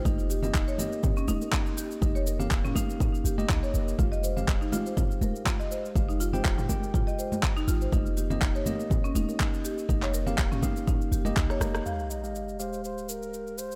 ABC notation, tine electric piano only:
X:1
M:4/4
L:1/16
Q:"Swing 16ths" 1/4=122
K:Fm
V:1 name="Tine electric piano"
[B,Ge]3 [B,Ge]3 [B,Ge]8- [B,Ge]2 | [B,Ge]3 [B,Gf]3 [B,Gf]4- [B,Gf] [B,Ge]4- [B,Ge] | [A,Gf]3 [A,Gf]3 [A,Gf]8- [A,Gf]2 | [A,Gf]3 [A,Gg]3 [A,Gg]8- [A,Gg]2 |
[B,Ge]3 [B,Ge]3 [B,Ge]8- [B,Ge]2 | [B,Ge]3 [B,Gf]3 [B,Gf]4- [B,Gf] [B,Ge]4- [B,Ge] | [A,Gf]3 [A,Gf]3 [A,Gf]8- [A,Gf]2 |]